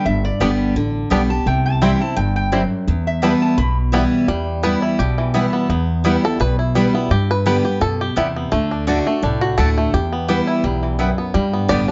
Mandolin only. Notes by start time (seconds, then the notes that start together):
0.40 B3 G4 D5 G5
1.10 B3 G4 D5 G5
1.82 C4 E4 C5 G5
2.52 C4 E4 C5 G5
3.22 B3 E4 B4 G5
3.93 B3 E4 B4 G5
4.63 B3 E4 B4 G5
5.34 B3 E4 B4 G5
6.04 B3 E4 B4 G5
6.75 B3 E4 B4 G5
7.46 B3 G4 D5 G5
8.16 B3 G4 D5 G5
8.87 A3 F#4 D5 A5
9.57 A3 F#4 D5 A5
10.28 B3 E4 B4 G5
10.99 B3 E4 B4 G5
11.69 B3 G4 D5 G5